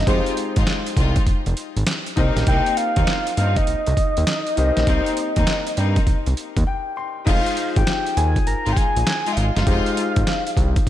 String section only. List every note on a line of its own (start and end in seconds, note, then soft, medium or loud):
0.07 0.29 G#3 loud
0.07 0.29 D#4 medium
0.07 0.29 F4 loud
0.57 0.71 G#3 medium
0.57 0.71 D#4 medium
0.57 0.72 F4 medium
0.97 1.19 G#3 medium
0.97 1.19 D#4 medium
0.97 1.19 F4 medium
2.17 2.39 A#3 medium
2.17 2.39 C4 medium
2.17 2.39 D#4 medium
2.47 2.69 A#3 loud
2.47 2.69 C4 medium
2.47 2.69 D#4 loud
2.97 3.11 A#3 medium
2.97 3.11 C4 medium
2.97 3.11 D#4 medium
3.37 3.59 A#3 medium
3.37 3.59 C4 medium
3.37 3.59 D#4 medium
4.87 5.09 A#3 medium
4.87 5.09 C4 medium
4.87 5.09 D#4 loud
5.36 5.51 A#3 medium
5.36 5.51 C4 medium
5.36 5.51 D#4 medium
5.77 5.98 A#3 medium
5.77 5.99 C4 medium
5.77 5.99 D#4 medium
7.26 7.55 G#3 medium
7.26 7.55 D#4 medium
7.26 7.55 F4 loud
8.66 8.81 G#3 medium
8.66 8.81 D#4 medium
8.66 8.81 F4 medium
9.26 9.41 G#3 medium
9.26 9.41 D#4 medium
9.26 9.41 F4 medium
9.56 9.65 G#3 medium
9.56 9.66 D#4 medium
9.56 9.66 F4 medium
9.67 9.95 G#3 medium
9.67 9.95 D#4 medium
9.67 9.95 F4 loud